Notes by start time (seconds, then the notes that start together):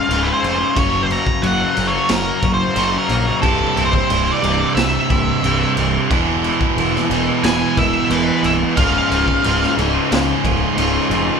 Already playing: F4 F5
0.09 C#1 C#2 G#2 C#3 F3 F4, crash
0.23 F4 B4
0.27 C#3 F3
0.33 C5
0.42 F1 G#2 C#3 F3 F4, crash
0.59 C#3 F3 F4
0.75 F#1 F#2 C#3 F#3 A#3 C#4 F#4 C#5, kick, crash
0.93 F#3 A#3 C#4 F#4
1.03 C6
1.09 F#3 A#3 C#4 F#4 A#5, crash
1.27 kick
1.42 F#1 F#2 C#3 F#3 A#3 C#4 F#4 F#5, crash
1.59 F#3 A#3 C#4 F#4
1.74 F#1 F#2 C#3 F#3, muted clean electric guitar stroke, crash
1.87 C#5
1.92 F#3 A#3 C#4 F#4
2.09 F#1 A#4, snare, crash
2.42 F#1 F#3 A#3 C#4 F#4, kick, crash
2.54 C5
2.76 F#1 F#2 C#3 F#3 A#3 C#4 F#4, crash
2.94 F#3 A#3 C#4 F#4
2.98 A#4
3.09 A#1 F#3 A#3 C#4 F#4, crash
3.25 F#3 A#3 C#4 F#4
3.42 C1 C2 G2 C3 G3 E4 A4, kick, crash
3.59 C3 G3 E4
3.76 C1 G2 C3 G3 E4, crash
3.85 C5
3.93 kick
4.09 C1 C2 G2 C3 G3 E4, crash
4.27 C3 G3 E4
4.32 D5
4.42 C1 C2 G2 C3, muted clean electric guitar stroke, crash
4.59 C3 G3 E4
4.75 C2 E5, snare, crash
5.09 C1 G2 C3 G3 E4, kick, crash
5.43 C1 C2 G2 C3 G3 E4, crash
5.59 C3 G3 E4
5.76 C1 G2 C3 G3 E4, crash
5.93 C3 G3 E4
6.10 E1 E2 B2 E3 G#3 B3 E4, kick, crash
6.26 E3 G#3 B3 E4
6.43 E3 G#3 B3 E4, crash
6.61 kick
6.76 E1 E2 B2 E3 G#3 B3 E4, crash
6.93 E3 G#3 B3 E4, snare
7.10 E1 E2 B2 E3, muted clean electric guitar stroke, crash
7.27 E3 G#3 B3 E4
7.43 E1 G#5, snare, crash
7.76 E1 E3 G#3 B3 E4 E5, kick, crash
8.09 E1 E2 B2 E3 G#3 B3 E4 B4, crash
8.25 E3 G#3 B3 E4
8.42 C1 E3 G#3 B3 E4 E5, crash
8.59 E3 G#3 B3 E4
8.76 C#1 C#2 G#2 C#3 F3 F4 F5, kick, crash
8.93 C#3 F3 F4
9.10 C#1 G#2 C#3 F3 F4, crash
9.28 kick
9.44 C#1 C#2 G#2 C#3 F3 F4, crash
9.61 C#3 F3 F4, snare
9.77 C#1 C#2 G#2 C#3, muted clean electric guitar stroke, crash
9.93 C#3 F3 F4
10.12 C#2, snare, crash
10.44 C#1 G#2 C#3 F3 F4, kick, crash
10.77 C#1 C#2 G#2 C#3 F3 F4, crash
10.94 C#3 F3 F4
11.10 F1 G#2 C#3 F3 F4, crash
11.27 C#3 F3 F4